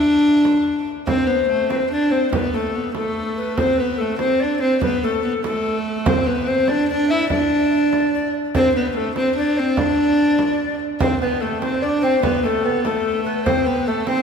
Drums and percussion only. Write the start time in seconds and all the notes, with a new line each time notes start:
0.23 frame drum
0.45 frame drum
0.66 frame drum
0.87 frame drum
1.07 frame drum
1.29 frame drum
1.70 frame drum
2.33 frame drum
2.54 frame drum
2.95 frame drum
3.58 frame drum
3.78 frame drum
4.19 frame drum
4.81 frame drum
5.03 frame drum
5.44 frame drum
6.06 frame drum
6.26 frame drum
6.68 frame drum
7.30 frame drum
7.51 frame drum
7.93 frame drum
8.55 frame drum
8.75 frame drum
9.16 frame drum
9.77 frame drum
10.39 frame drum
10.60 frame drum
11.01 frame drum
11.22 frame drum
11.62 frame drum
12.23 frame drum
12.44 frame drum
12.85 frame drum
13.46 frame drum
13.67 frame drum
14.07 frame drum